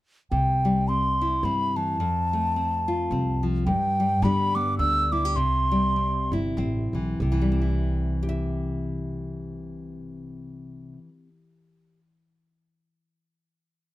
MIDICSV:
0, 0, Header, 1, 4, 480
1, 0, Start_track
1, 0, Key_signature, 0, "major"
1, 0, Tempo, 558659
1, 274, Time_signature, 3, 2, 24, 8
1, 3635, Tempo, 579710
1, 5075, Tempo, 621762
1, 6035, Tempo, 642398
1, 11063, End_track
2, 0, Start_track
2, 0, Title_t, "Flute"
2, 0, Program_c, 0, 73
2, 270, Note_on_c, 0, 79, 74
2, 756, Note_on_c, 0, 84, 74
2, 768, Note_off_c, 0, 79, 0
2, 1242, Note_on_c, 0, 83, 73
2, 1255, Note_off_c, 0, 84, 0
2, 1516, Note_on_c, 0, 81, 72
2, 1529, Note_off_c, 0, 83, 0
2, 2954, Note_off_c, 0, 81, 0
2, 3146, Note_on_c, 0, 79, 68
2, 3635, Note_on_c, 0, 83, 79
2, 3647, Note_off_c, 0, 79, 0
2, 3900, Note_on_c, 0, 86, 83
2, 3913, Note_off_c, 0, 83, 0
2, 4087, Note_off_c, 0, 86, 0
2, 4092, Note_on_c, 0, 88, 90
2, 4372, Note_on_c, 0, 86, 80
2, 4385, Note_off_c, 0, 88, 0
2, 4570, Note_on_c, 0, 84, 70
2, 4582, Note_off_c, 0, 86, 0
2, 5341, Note_off_c, 0, 84, 0
2, 11063, End_track
3, 0, Start_track
3, 0, Title_t, "Nylon-string guitar"
3, 0, Program_c, 1, 24
3, 272, Note_on_c, 1, 48, 53
3, 557, Note_on_c, 1, 55, 53
3, 763, Note_on_c, 1, 60, 45
3, 1044, Note_on_c, 1, 64, 58
3, 1242, Note_off_c, 1, 60, 0
3, 1246, Note_on_c, 1, 60, 54
3, 1511, Note_off_c, 1, 48, 0
3, 1514, Note_on_c, 1, 52, 53
3, 1689, Note_off_c, 1, 52, 0
3, 1695, Note_off_c, 1, 60, 0
3, 1715, Note_off_c, 1, 55, 0
3, 1718, Note_off_c, 1, 64, 0
3, 1718, Note_on_c, 1, 41, 62
3, 2004, Note_on_c, 1, 57, 50
3, 2201, Note_on_c, 1, 60, 47
3, 2474, Note_on_c, 1, 65, 55
3, 2670, Note_off_c, 1, 60, 0
3, 2680, Note_on_c, 1, 60, 50
3, 2946, Note_on_c, 1, 53, 54
3, 3126, Note_off_c, 1, 53, 0
3, 3130, Note_off_c, 1, 65, 0
3, 3132, Note_off_c, 1, 41, 0
3, 3133, Note_off_c, 1, 60, 0
3, 3135, Note_off_c, 1, 57, 0
3, 3149, Note_on_c, 1, 43, 60
3, 3435, Note_on_c, 1, 55, 52
3, 3609, Note_off_c, 1, 43, 0
3, 3627, Note_on_c, 1, 43, 62
3, 3631, Note_on_c, 1, 50, 50
3, 3635, Note_off_c, 1, 55, 0
3, 3639, Note_on_c, 1, 59, 47
3, 3645, Note_on_c, 1, 62, 51
3, 3651, Note_on_c, 1, 67, 59
3, 3895, Note_off_c, 1, 59, 0
3, 3905, Note_on_c, 1, 59, 51
3, 4092, Note_off_c, 1, 62, 0
3, 4102, Note_on_c, 1, 62, 50
3, 4372, Note_off_c, 1, 67, 0
3, 4375, Note_on_c, 1, 64, 57
3, 4479, Note_off_c, 1, 64, 0
3, 4479, Note_on_c, 1, 67, 51
3, 4556, Note_off_c, 1, 43, 0
3, 4558, Note_off_c, 1, 62, 0
3, 4559, Note_off_c, 1, 59, 0
3, 4567, Note_on_c, 1, 48, 68
3, 4582, Note_off_c, 1, 67, 0
3, 4583, Note_off_c, 1, 50, 0
3, 4864, Note_on_c, 1, 55, 56
3, 5068, Note_on_c, 1, 60, 46
3, 5353, Note_on_c, 1, 64, 57
3, 5537, Note_off_c, 1, 60, 0
3, 5547, Note_on_c, 1, 60, 53
3, 5820, Note_off_c, 1, 48, 0
3, 5829, Note_on_c, 1, 52, 52
3, 6009, Note_off_c, 1, 60, 0
3, 6010, Note_off_c, 1, 52, 0
3, 6038, Note_on_c, 1, 48, 55
3, 6113, Note_on_c, 1, 52, 52
3, 6177, Note_off_c, 1, 55, 0
3, 6186, Note_on_c, 1, 55, 50
3, 6262, Note_on_c, 1, 60, 50
3, 6326, Note_off_c, 1, 64, 0
3, 6335, Note_on_c, 1, 64, 47
3, 6789, Note_off_c, 1, 55, 0
3, 6792, Note_on_c, 1, 67, 60
3, 6834, Note_off_c, 1, 64, 0
3, 6837, Note_on_c, 1, 76, 57
3, 8851, Note_off_c, 1, 48, 0
3, 8926, Note_off_c, 1, 52, 0
3, 9075, Note_off_c, 1, 60, 0
3, 9605, Note_off_c, 1, 67, 0
3, 9650, Note_off_c, 1, 76, 0
3, 11063, End_track
4, 0, Start_track
4, 0, Title_t, "Upright bass"
4, 0, Program_c, 2, 32
4, 271, Note_on_c, 2, 36, 71
4, 1197, Note_off_c, 2, 36, 0
4, 1229, Note_on_c, 2, 43, 75
4, 1707, Note_off_c, 2, 43, 0
4, 1707, Note_on_c, 2, 41, 71
4, 2636, Note_off_c, 2, 41, 0
4, 2670, Note_on_c, 2, 36, 71
4, 3149, Note_on_c, 2, 43, 80
4, 3162, Note_off_c, 2, 36, 0
4, 3609, Note_off_c, 2, 43, 0
4, 3629, Note_on_c, 2, 43, 85
4, 4079, Note_off_c, 2, 43, 0
4, 4099, Note_on_c, 2, 38, 80
4, 4578, Note_off_c, 2, 38, 0
4, 4578, Note_on_c, 2, 36, 72
4, 5314, Note_off_c, 2, 36, 0
4, 5343, Note_on_c, 2, 31, 69
4, 5524, Note_off_c, 2, 31, 0
4, 5538, Note_on_c, 2, 33, 71
4, 5795, Note_off_c, 2, 33, 0
4, 5817, Note_on_c, 2, 35, 57
4, 6007, Note_off_c, 2, 35, 0
4, 6025, Note_on_c, 2, 36, 73
4, 8808, Note_off_c, 2, 36, 0
4, 11063, End_track
0, 0, End_of_file